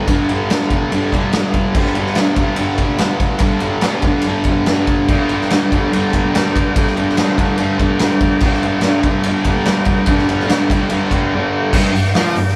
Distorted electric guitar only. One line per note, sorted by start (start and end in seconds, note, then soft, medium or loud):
0.00 0.11 G3 medium
0.08 0.49 G2 medium
0.08 0.31 D3 loud
0.08 0.29 G3 loud
0.30 0.51 D3 medium
0.30 0.52 G3 medium
0.50 0.91 G2 medium
0.50 0.74 D3 medium
0.50 0.71 G3 medium
0.72 0.91 D3 medium
0.72 0.94 G3 medium
0.91 1.34 G2 medium
0.91 1.15 D3 medium
0.91 1.13 G3 medium
1.13 1.34 D3 medium
1.13 1.36 G3 medium
1.35 1.75 G2 medium
1.35 1.75 D3 medium
1.35 1.78 G3 medium
1.75 2.17 G2 medium
1.75 1.97 D3 medium
1.75 1.95 G3 loud
1.96 2.18 D3 medium
1.96 2.19 G3 medium
2.17 2.57 G2 medium
2.17 2.41 D3 medium
2.17 2.40 G3 medium
2.40 2.58 D3 medium
2.40 2.59 G3 medium
2.57 2.97 G2 medium
2.57 2.82 D3 medium
2.57 2.79 G3 loud
2.80 2.99 D3 medium
2.80 3.00 G3 medium
2.98 3.39 G2 medium
2.98 3.40 D3 medium
2.98 3.42 G3 medium
3.39 3.81 G2 loud
3.39 3.63 D3 loud
3.39 3.60 G3 loud
3.61 3.82 D3 medium
3.61 3.84 G3 medium
3.82 4.26 G2 medium
3.82 4.05 D3 medium
3.82 4.04 G3 medium
4.04 4.26 D3 medium
4.04 4.28 G3 medium
4.27 4.66 G2 medium
4.27 4.49 D3 loud
4.27 4.48 G3 loud
4.48 4.67 D3 medium
4.48 4.69 G3 medium
4.67 5.09 G2 medium
4.67 5.09 D3 medium
4.67 5.12 G3 medium
5.10 5.52 G2 medium
5.10 5.33 D3 medium
5.10 5.31 G3 loud
5.32 5.52 D3 medium
5.32 5.55 G3 medium
5.52 5.92 G2 medium
5.52 5.74 D3 medium
5.52 5.71 G3 medium
5.71 5.93 D3 medium
5.71 5.94 G3 medium
5.92 6.32 G2 medium
5.92 6.15 D3 loud
5.92 6.12 G3 medium
6.12 6.33 D3 medium
6.12 6.35 G3 medium
6.33 6.74 G2 medium
6.33 6.75 D3 medium
6.33 6.77 G3 medium
6.74 7.17 G2 medium
6.74 6.97 D3 loud
6.74 6.95 G3 medium
6.95 7.18 D3 medium
6.95 7.19 G3 medium
7.18 7.56 G2 medium
7.18 7.37 D3 medium
7.18 7.35 G3 medium
7.35 7.57 D3 medium
7.35 7.59 G3 medium
7.56 7.99 G2 medium
7.56 7.79 D3 loud
7.56 7.77 G3 loud
7.78 7.99 D3 medium
7.78 8.02 G3 medium
7.99 8.43 G2 medium
7.99 8.43 D3 medium
7.99 8.45 G3 medium
8.43 8.85 G2 medium
8.43 8.65 D3 loud
8.43 8.63 G3 loud
8.63 8.84 D3 medium
8.63 8.87 G3 medium
8.85 9.26 G2 medium
8.85 9.07 D3 medium
8.85 9.06 G3 medium
9.06 9.27 D3 medium
9.06 9.29 G3 medium
9.26 9.66 G2 medium
9.26 9.48 D3 medium
9.26 9.47 G3 loud
9.48 9.67 D3 medium
9.48 9.69 G3 medium
9.66 10.06 G2 medium
9.66 10.07 D3 medium
9.66 10.09 G3 medium
10.07 10.47 G2 medium
10.07 10.28 D3 medium
10.07 10.25 G3 loud
10.26 10.48 D3 medium
10.26 10.49 G3 medium
10.48 10.88 G2 medium
10.48 10.71 D3 medium
10.48 10.68 G3 medium
10.69 10.91 D3 medium
10.69 10.91 G3 medium
10.89 11.32 G2 medium
10.89 11.14 D3 medium
10.89 11.11 G3 medium
11.12 11.35 D3 medium
11.12 11.35 G3 medium
11.35 11.73 G2 medium
11.35 11.75 D3 medium
11.35 11.75 G3 medium
11.74 11.92 G2 loud
11.93 12.10 G2 medium
12.16 12.36 F3 medium
12.36 12.52 G2 medium